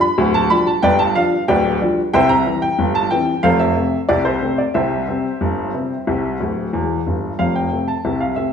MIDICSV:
0, 0, Header, 1, 2, 480
1, 0, Start_track
1, 0, Key_signature, -1, "major"
1, 0, Tempo, 650759
1, 619, Time_signature, 2, 2, 24, 8
1, 3020, Tempo, 658617
1, 6251, End_track
2, 0, Start_track
2, 0, Title_t, "Upright piano"
2, 0, Program_c, 0, 0
2, 6, Note_on_c, 0, 83, 105
2, 132, Note_on_c, 0, 26, 91
2, 132, Note_on_c, 0, 38, 99
2, 204, Note_off_c, 0, 83, 0
2, 253, Note_on_c, 0, 81, 110
2, 339, Note_off_c, 0, 26, 0
2, 339, Note_off_c, 0, 38, 0
2, 369, Note_on_c, 0, 83, 107
2, 372, Note_on_c, 0, 53, 58
2, 376, Note_off_c, 0, 81, 0
2, 376, Note_on_c, 0, 55, 55
2, 379, Note_on_c, 0, 62, 60
2, 493, Note_on_c, 0, 81, 90
2, 494, Note_off_c, 0, 83, 0
2, 506, Note_off_c, 0, 53, 0
2, 509, Note_off_c, 0, 55, 0
2, 511, Note_off_c, 0, 62, 0
2, 609, Note_on_c, 0, 79, 115
2, 613, Note_on_c, 0, 43, 92
2, 614, Note_on_c, 0, 31, 94
2, 616, Note_off_c, 0, 81, 0
2, 618, Note_on_c, 0, 71, 86
2, 619, Note_on_c, 0, 74, 95
2, 729, Note_on_c, 0, 81, 107
2, 730, Note_off_c, 0, 71, 0
2, 730, Note_off_c, 0, 74, 0
2, 733, Note_off_c, 0, 79, 0
2, 819, Note_off_c, 0, 31, 0
2, 819, Note_off_c, 0, 43, 0
2, 852, Note_on_c, 0, 77, 105
2, 853, Note_off_c, 0, 81, 0
2, 856, Note_on_c, 0, 53, 60
2, 857, Note_on_c, 0, 55, 59
2, 859, Note_on_c, 0, 62, 64
2, 988, Note_off_c, 0, 53, 0
2, 989, Note_off_c, 0, 55, 0
2, 990, Note_off_c, 0, 62, 0
2, 1046, Note_off_c, 0, 77, 0
2, 1093, Note_on_c, 0, 79, 106
2, 1095, Note_on_c, 0, 26, 90
2, 1095, Note_on_c, 0, 38, 95
2, 1101, Note_on_c, 0, 71, 81
2, 1101, Note_on_c, 0, 74, 78
2, 1301, Note_off_c, 0, 26, 0
2, 1301, Note_off_c, 0, 38, 0
2, 1323, Note_off_c, 0, 71, 0
2, 1323, Note_off_c, 0, 74, 0
2, 1324, Note_off_c, 0, 79, 0
2, 1339, Note_on_c, 0, 53, 57
2, 1340, Note_on_c, 0, 55, 60
2, 1342, Note_on_c, 0, 62, 64
2, 1471, Note_off_c, 0, 53, 0
2, 1472, Note_off_c, 0, 55, 0
2, 1473, Note_off_c, 0, 62, 0
2, 1575, Note_on_c, 0, 79, 115
2, 1579, Note_on_c, 0, 36, 89
2, 1579, Note_on_c, 0, 48, 99
2, 1584, Note_on_c, 0, 72, 98
2, 1584, Note_on_c, 0, 76, 99
2, 1691, Note_on_c, 0, 82, 118
2, 1694, Note_off_c, 0, 72, 0
2, 1694, Note_off_c, 0, 76, 0
2, 1697, Note_off_c, 0, 79, 0
2, 1783, Note_off_c, 0, 36, 0
2, 1783, Note_off_c, 0, 48, 0
2, 1813, Note_on_c, 0, 52, 58
2, 1818, Note_on_c, 0, 55, 56
2, 1822, Note_on_c, 0, 60, 53
2, 1923, Note_off_c, 0, 82, 0
2, 1933, Note_on_c, 0, 79, 105
2, 1947, Note_off_c, 0, 52, 0
2, 1950, Note_off_c, 0, 55, 0
2, 1953, Note_off_c, 0, 60, 0
2, 2055, Note_on_c, 0, 43, 77
2, 2056, Note_on_c, 0, 31, 93
2, 2164, Note_off_c, 0, 79, 0
2, 2175, Note_on_c, 0, 81, 108
2, 2261, Note_off_c, 0, 31, 0
2, 2261, Note_off_c, 0, 43, 0
2, 2291, Note_on_c, 0, 79, 97
2, 2296, Note_on_c, 0, 52, 61
2, 2297, Note_off_c, 0, 81, 0
2, 2300, Note_on_c, 0, 55, 51
2, 2301, Note_on_c, 0, 60, 58
2, 2429, Note_off_c, 0, 52, 0
2, 2432, Note_off_c, 0, 55, 0
2, 2433, Note_off_c, 0, 60, 0
2, 2523, Note_off_c, 0, 79, 0
2, 2530, Note_on_c, 0, 77, 108
2, 2535, Note_on_c, 0, 29, 83
2, 2535, Note_on_c, 0, 41, 85
2, 2538, Note_on_c, 0, 72, 79
2, 2539, Note_on_c, 0, 69, 93
2, 2650, Note_off_c, 0, 72, 0
2, 2651, Note_off_c, 0, 69, 0
2, 2651, Note_on_c, 0, 76, 97
2, 2655, Note_off_c, 0, 77, 0
2, 2741, Note_off_c, 0, 29, 0
2, 2741, Note_off_c, 0, 41, 0
2, 2776, Note_on_c, 0, 48, 47
2, 2778, Note_on_c, 0, 57, 47
2, 2780, Note_on_c, 0, 60, 50
2, 2909, Note_off_c, 0, 48, 0
2, 2910, Note_off_c, 0, 57, 0
2, 2912, Note_off_c, 0, 60, 0
2, 2943, Note_off_c, 0, 76, 0
2, 3014, Note_on_c, 0, 74, 100
2, 3018, Note_on_c, 0, 36, 81
2, 3019, Note_on_c, 0, 48, 77
2, 3132, Note_on_c, 0, 72, 88
2, 3136, Note_off_c, 0, 74, 0
2, 3222, Note_off_c, 0, 36, 0
2, 3223, Note_off_c, 0, 48, 0
2, 3256, Note_on_c, 0, 48, 50
2, 3258, Note_on_c, 0, 57, 45
2, 3263, Note_on_c, 0, 60, 56
2, 3364, Note_off_c, 0, 72, 0
2, 3376, Note_on_c, 0, 74, 75
2, 3389, Note_off_c, 0, 48, 0
2, 3391, Note_off_c, 0, 57, 0
2, 3394, Note_off_c, 0, 60, 0
2, 3492, Note_on_c, 0, 76, 91
2, 3496, Note_on_c, 0, 48, 69
2, 3498, Note_off_c, 0, 74, 0
2, 3498, Note_on_c, 0, 36, 78
2, 3503, Note_on_c, 0, 67, 66
2, 3503, Note_on_c, 0, 72, 64
2, 3703, Note_off_c, 0, 48, 0
2, 3704, Note_off_c, 0, 36, 0
2, 3740, Note_on_c, 0, 48, 47
2, 3742, Note_on_c, 0, 55, 43
2, 3744, Note_on_c, 0, 60, 55
2, 3873, Note_off_c, 0, 48, 0
2, 3874, Note_off_c, 0, 55, 0
2, 3876, Note_off_c, 0, 60, 0
2, 3979, Note_on_c, 0, 31, 83
2, 3979, Note_on_c, 0, 43, 72
2, 4185, Note_off_c, 0, 31, 0
2, 4185, Note_off_c, 0, 43, 0
2, 4222, Note_on_c, 0, 48, 41
2, 4224, Note_on_c, 0, 55, 47
2, 4227, Note_on_c, 0, 60, 50
2, 4354, Note_off_c, 0, 48, 0
2, 4356, Note_off_c, 0, 55, 0
2, 4358, Note_off_c, 0, 60, 0
2, 4462, Note_on_c, 0, 48, 67
2, 4463, Note_on_c, 0, 36, 76
2, 4651, Note_off_c, 0, 76, 0
2, 4667, Note_off_c, 0, 36, 0
2, 4667, Note_off_c, 0, 48, 0
2, 4703, Note_on_c, 0, 26, 65
2, 4703, Note_on_c, 0, 38, 71
2, 4884, Note_off_c, 0, 26, 0
2, 4884, Note_off_c, 0, 38, 0
2, 4917, Note_off_c, 0, 67, 0
2, 4917, Note_off_c, 0, 72, 0
2, 4942, Note_on_c, 0, 28, 66
2, 4944, Note_on_c, 0, 40, 76
2, 5124, Note_off_c, 0, 28, 0
2, 5124, Note_off_c, 0, 40, 0
2, 5186, Note_on_c, 0, 43, 59
2, 5188, Note_on_c, 0, 31, 67
2, 5365, Note_off_c, 0, 43, 0
2, 5366, Note_off_c, 0, 31, 0
2, 5421, Note_on_c, 0, 77, 83
2, 5424, Note_on_c, 0, 29, 62
2, 5425, Note_on_c, 0, 41, 66
2, 5542, Note_off_c, 0, 77, 0
2, 5543, Note_on_c, 0, 79, 78
2, 5628, Note_off_c, 0, 29, 0
2, 5628, Note_off_c, 0, 41, 0
2, 5663, Note_on_c, 0, 48, 41
2, 5668, Note_on_c, 0, 57, 36
2, 5671, Note_on_c, 0, 60, 41
2, 5771, Note_off_c, 0, 79, 0
2, 5776, Note_on_c, 0, 81, 72
2, 5794, Note_off_c, 0, 48, 0
2, 5798, Note_off_c, 0, 57, 0
2, 5800, Note_off_c, 0, 60, 0
2, 5901, Note_on_c, 0, 36, 64
2, 5901, Note_on_c, 0, 48, 65
2, 6006, Note_off_c, 0, 81, 0
2, 6016, Note_on_c, 0, 77, 70
2, 6103, Note_off_c, 0, 48, 0
2, 6104, Note_off_c, 0, 36, 0
2, 6129, Note_on_c, 0, 76, 78
2, 6134, Note_on_c, 0, 48, 39
2, 6137, Note_off_c, 0, 77, 0
2, 6137, Note_on_c, 0, 57, 35
2, 6140, Note_on_c, 0, 60, 36
2, 6251, Note_off_c, 0, 48, 0
2, 6251, Note_off_c, 0, 57, 0
2, 6251, Note_off_c, 0, 60, 0
2, 6251, Note_off_c, 0, 76, 0
2, 6251, End_track
0, 0, End_of_file